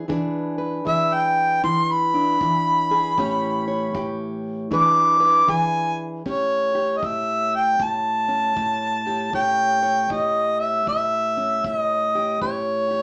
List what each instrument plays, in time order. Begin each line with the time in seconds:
0.08 steel-string acoustic guitar E3 D4 G#4 B4, kick
0.58 steel-string acoustic guitar B4
0.85 steel-string acoustic guitar E3 G#4, harmonica E5, kick
1.14 harmonica G5
1.64 steel-string acoustic guitar E3, harmonica C6, kick
1.91 harmonica B5
2.14 steel-string acoustic guitar D4
2.41 steel-string acoustic guitar E3, kick
2.91 steel-string acoustic guitar G#4
3.18 steel-string acoustic guitar A2 C#4 G4 C#5, kick
3.68 steel-string acoustic guitar C#5
3.94 steel-string acoustic guitar A2 G4, kick
4.71 steel-string acoustic guitar E3 D4 G#4 B4, harmonica D6, kick
5.20 steel-string acoustic guitar B4
5.47 steel-string acoustic guitar E3 G#4, harmonica G#5, kick
6.25 steel-string acoustic guitar A2 C#4 G4, harmonica C#5, kick
6.75 steel-string acoustic guitar G4
6.98 harmonica D#5
7.02 steel-string acoustic guitar A2 G4, harmonica E5, kick
7.56 harmonica G5
7.79 steel-string acoustic guitar A2, harmonica A5, kick
8.28 steel-string acoustic guitar C#4
8.56 steel-string acoustic guitar A2, kick
9.07 steel-string acoustic guitar G4
9.33 steel-string acoustic guitar A2 C#4 G4 C#5, harmonica G5, kick
9.83 steel-string acoustic guitar C#5
10.10 steel-string acoustic guitar A2 G4, harmonica D#5, kick
10.60 harmonica E5
10.86 steel-string acoustic guitar A2, harmonica E5, kick
11.37 steel-string acoustic guitar C#4
11.64 steel-string acoustic guitar A2, harmonica D#5, kick
12.15 steel-string acoustic guitar G4
12.42 steel-string acoustic guitar A2 C#4 G4, harmonica C#5, kick
12.91 steel-string acoustic guitar G4